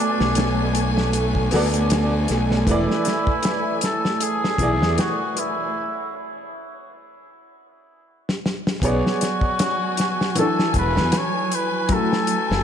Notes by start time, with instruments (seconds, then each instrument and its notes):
Already playing: string section A3 G#5, upright piano B3 F#4 A4 D5, muted trumpet D4, synth texture C#5 C#6
0.20 fingered electric bass B1, snare
0.35 snare, closed hi-hat
0.75 closed hi-hat
0.98 snare
1.13 closed hi-hat
1.35 kick
1.51 fingered electric bass D2, upright piano B3 F#4 A4, snare, open hi-hat
1.56 upright piano D5
1.74 closed hi-hat
1.90 snare, closed hi-hat
2.28 fingered electric bass B1, snare, closed hi-hat
2.51 snare
2.66 fingered electric bass E1, upright piano E3 E4 B4, muted trumpet E4, kick, closed hi-hat
2.71 upright piano D5
2.91 snare
3.05 snare, closed hi-hat
3.27 kick
3.43 snare, closed hi-hat
3.81 muted trumpet A4, snare, closed hi-hat
4.05 snare
4.20 muted trumpet G#4, closed hi-hat
4.44 snare
4.58 fingered electric bass B1, upright piano E3 E4 G#4, kick, closed hi-hat
4.63 upright piano D5
4.82 fingered electric bass E2, snare
4.98 muted trumpet F#4, snare, closed hi-hat
5.37 muted trumpet E4, closed hi-hat
8.29 snare
8.46 snare
8.67 snare
8.82 fingered electric bass B1, string section F#3 G#5, upright piano B3 G#4 C#5, kick, closed hi-hat
8.87 muted trumpet F#4, upright piano D5
9.07 snare
9.21 snare, closed hi-hat
9.41 kick
9.59 snare, closed hi-hat
9.97 snare, closed hi-hat
10.21 snare
10.35 upright piano E3 E4 A4, closed hi-hat
10.39 upright piano D4, muted trumpet A4
10.59 snare
10.74 fingered electric bass E1, kick, closed hi-hat
10.79 muted trumpet B4
10.97 fingered electric bass E2, snare
11.12 snare, closed hi-hat
11.18 muted trumpet C#5
11.52 muted trumpet B4, closed hi-hat
11.89 upright piano F#3 E4 F#4, kick, closed hi-hat
11.93 upright piano A3, muted trumpet A4
12.13 snare
12.27 closed hi-hat
12.51 fingered electric bass F#1, snare